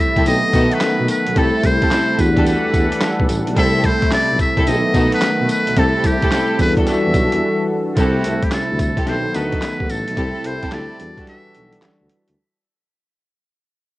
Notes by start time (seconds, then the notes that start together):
Already playing: C3 G3 A3 C4 E4 A4
0.00 E5
0.16 C2 C4 E4 G4 A4, kick, closed hi-hat
0.26 B1 D#3 F#3 A3 B3 D#4 A4 D#5, closed hi-hat, tambourine
0.53 B2 B3 D#4 F#4 A4, kick, closed hi-hat, tambourine
0.72 B4, closed hi-hat
0.81 snare, clap, closed hi-hat, tambourine
1.00 B2
1.09 B4, closed hi-hat, tambourine
1.27 B1, closed hi-hat
1.36 C2 C3 G3 A3 C4 E4 G4 A4, kick, closed hi-hat
1.64 C2 C5, kick, closed hi-hat, tambourine
1.82 C4 E4 G4 A4, kick, closed hi-hat
1.91 C4 E4 G4 A4, snare, clap, closed hi-hat, tambourine
2.18 E2 E3 G3 A3 D4 E4 F#4 A4 B4 F#5, kick, closed hi-hat, tambourine
2.27 G4
2.37 D4 F#4 G4 A4, kick, closed hi-hat
2.46 B4, closed hi-hat, tambourine
2.65 E2
2.74 E2, kick, closed hi-hat, tambourine
2.92 closed hi-hat
3.01 snare, clap, closed hi-hat, tambourine
3.20 B1, kick
3.29 A1, closed hi-hat, tambourine
3.47 B1, closed hi-hat
3.56 C2 C3 G3 A3 C4 E4 G4 A4 E5, kick, closed hi-hat
3.84 C5, kick, closed hi-hat, tambourine
4.02 kick, closed hi-hat
4.11 B1 D5, snare, clap, closed hi-hat, tambourine
4.30 B1
4.39 E5, kick, closed hi-hat, tambourine
4.57 C2 C4 E4 G4 A4, kick, closed hi-hat
4.66 B1 D#3 F#3 A3 B3 D#4 G#4 D#5, closed hi-hat, tambourine
4.75 A4
4.94 B2 B3 D#4 F#4 A4, kick, closed hi-hat, tambourine
5.12 B4, closed hi-hat
5.21 snare, clap, closed hi-hat, tambourine
5.40 B2
5.49 B4, closed hi-hat, tambourine
5.67 B1, closed hi-hat
5.76 C2 C3 G3 A3 C4 E4 G4 A4, kick, closed hi-hat
6.04 C2 G4, kick, closed hi-hat, tambourine
6.22 C4 E4 G4 A4, kick, closed hi-hat
6.31 C4 E4 G4 A4, snare, clap, closed hi-hat, tambourine
6.59 E2 E3 G3 D4 E4 F#4 A4 B4, kick, open hi-hat, tambourine
6.77 D4 F#4 G4 A4, kick, closed hi-hat
6.87 E5, snare, closed hi-hat, tambourine
7.06 E2
7.14 B1, kick, closed hi-hat, tambourine
7.32 E2, closed hi-hat
7.94 C2 C3 G3 A3 C4 E4 F4 G4 A4, kick, closed hi-hat, tambourine
7.98 E4 F#4 A4
8.24 C2, closed hi-hat, tambourine
8.43 G4, kick, closed hi-hat
8.52 D2 A4, snare, clap, closed hi-hat, tambourine
8.70 D2
8.79 A4, kick, closed hi-hat, tambourine
8.97 C4 E4 G4 A4, kick, closed hi-hat
9.06 B1 D#3 F#3 B3 D#4 A4 C5, snare, closed hi-hat
9.34 D2 B3 D#4 F#4 A4 B4, closed hi-hat, tambourine
9.52 kick, closed hi-hat
9.62 snare, clap, closed hi-hat, tambourine
9.80 D#2, kick
9.89 A1 A4, closed hi-hat, tambourine
10.08 B1, closed hi-hat
10.17 C2 C3 G3 C4 E4 G4 A4, kick, closed hi-hat
10.44 C2 C5, closed hi-hat
10.62 C4 E4 G4 A4, kick, closed hi-hat
10.72 D2 C4 E4 G4 A4 D5, snare, clap, closed hi-hat
10.99 E2 E3 G3 D4 F#4 A4, closed hi-hat
11.17 D4 F#4 G4 A4, kick, closed hi-hat
11.27 E5, snare, closed hi-hat
11.46 B1
11.54 B1, closed hi-hat
11.73 closed hi-hat
11.82 D2, snare, clap, closed hi-hat
12.01 D2
12.10 closed hi-hat
12.28 D2, closed hi-hat